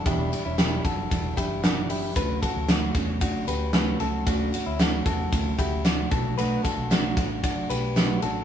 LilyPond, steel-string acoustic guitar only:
\new Staff \with { instrumentName = "Steel-string acoustic guitar" } { \time 4/4 \key d \major \tempo 4 = 114 <e, b, e g d' e'>8 <e g d' e'>8 <e, b, e g d' e'>8 <e g d' e'>8 <e g d' e'>8 <e g d' e'>8 <e, b, e g d' e'>8 <e g d' e'>8 | <d a cis' fis'>8 <a cis' fis'>8 <d a cis' fis'>8 <a cis' fis'>8 <d a cis' fis'>8 <a cis' fis'>8 <d a cis' fis'>8 <a cis' fis'>8 | <d a cis' fis'>8 <a cis' fis'>8 <d a cis' fis'>8 <a cis' fis'>8 <d a cis' fis'>8 <a cis' fis'>8 <d a cis' fis'>8 <a d' fis'>8 | <b, fis a d' fis'>8 <a d' fis'>8 <b, fis a d' fis'>8 <a d' fis'>8 <fis a d' fis'>8 <a d' fis'>8 <b, fis a d' fis'>8 <a d' fis'>8 | }